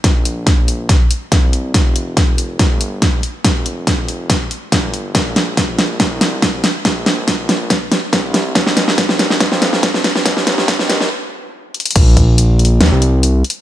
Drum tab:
CC |--------------------------------|--------------------------------|--------------------------------|--------------------------------|
HH |x---x---x---x---x---x---x---x---|x---x---x---x---x---x---x---x---|x---x---x---x---x---x---x---x---|x---x---x---x---x---x---x---x---|
SD |o-------o-------o-------o-------|o-------o-------o-------o-------|o-------o-------o-------o-------|o---o---o---o---o---o---o---o---|
BD |o-------o-------o-------o-------|o-------o-------o-------o-------|o-------o-------o-------o-------|o-------o-------o-------o-------|

CC |--------------------------------|--------------------------------|--------------------------------|x-------------------------------|
HH |x---x---x---x---x---x---x---x---|x---x---x---x---x---x---x---x---|x---x---x---x---------------xxxx|x---x---x---xx--x---x---x---xx--|
SD |o---o---o---o---o---o---o---o---|o-o-o-o-o-o-o-o-o-o-o-o-o-o-o-o-|o-o-o-o-o-o-o-o-----------------|----------------o---------------|
BD |o-------o-------o-------o-------|o-------o-------o-------o-------|o-------o-----------------------|o---o---------------------------|